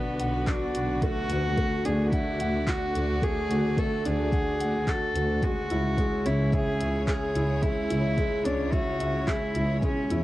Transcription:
Already playing: D3 B3 D4 F#4 B4 F#5
0.19 B1 F#5, closed hi-hat
0.47 D4 F#4, kick, clap, closed hi-hat
0.75 B1 F#4, closed hi-hat
1.02 A3 F#4, kick, closed hi-hat
1.29 D2 F#4, closed hi-hat
1.53 A3, kick
1.58 A3, closed hi-hat
1.85 D2 D4 G#4, closed hi-hat
2.12 E4 D5 F#5, kick, closed hi-hat
2.39 D2 F#5, closed hi-hat
2.67 F#4, kick, clap, closed hi-hat
2.94 D2 F#4, closed hi-hat
3.22 A3 G#4, kick, closed hi-hat
3.49 D2 F#4, closed hi-hat
3.77 A3 A4, kick, closed hi-hat
4.05 D2 D4 G#4, closed hi-hat
4.32 F#5, kick, closed hi-hat
4.60 D2 F#5, closed hi-hat
4.87 F#4 A4, kick, clap, closed hi-hat
5.14 D2 F#4, closed hi-hat
5.41 C#3 G#3 F#4, kick, closed hi-hat
5.55 G#3
5.64 E4
5.69 C#2 E4, closed hi-hat
5.97 G#3, kick, closed hi-hat
6.12 C#5
6.25 C#2 C#4 E4, closed hi-hat
6.52 G#4 E5, kick, closed hi-hat
6.80 C#2 E5, closed hi-hat
7.07 G#4, kick, clap, closed hi-hat
7.35 C#2 E4, closed hi-hat
7.62 G#3 E4, kick, closed hi-hat
7.90 C#2 E4, closed hi-hat
8.18 G#3, kick, closed hi-hat
8.45 C#2 C#4 D4, closed hi-hat
8.72 F#4 E5, kick, closed hi-hat
9.00 C#2 E5, closed hi-hat
9.27 E4 G#4, kick, clap, closed hi-hat
9.55 C#2 E4, closed hi-hat
9.82 B2 G#3 C#4, kick, closed hi-hat
10.09 E2 E4, closed hi-hat

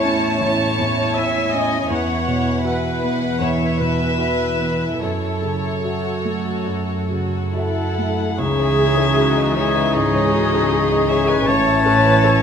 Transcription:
Already playing: A1 E2 A2 E4 C#5 E5
0.02 C#4 A5
0.41 A1 C#5
0.79 E2
1.16 E4 E5 G#5
1.54 C#4 D#5
1.89 E2 E4 B4 C#5 F#5
2.27 B2
2.65 F#4 B4 E5
3.03 B3 F#5
3.40 E2 C#5 E5
3.80 B2 B4
4.18 F#4 E5
4.59 B3
5.01 F#2 A4 C#5
5.42 C#3
5.84 F#4 E5
6.25 A3
6.67 F#2
7.10 C#3 F#4
7.55 E4 F#4 A4 E5 F#5
7.98 A3
8.37 C#2 C#3 E3 C#4 D#4 G#4 C#5 E5
8.59 C#5
8.78 G#4
8.97 A4
9.17 F#4 G#4
9.37 D#5
9.56 E3 G#4 C#5 E5
9.75 D#5
9.94 G#2 G#4 D#5
10.15 C#5
10.34 F#4 G#4
10.54 A4
10.72 G#4
10.92 D#5
11.09 G#4 C#5 E5
11.27 B4 D#5 G#5
11.45 A1 A2 E3 C#4 E4 C#5 A5
11.66 E5
11.86 A4 B4
12.05 B4
12.24 A4 C#5

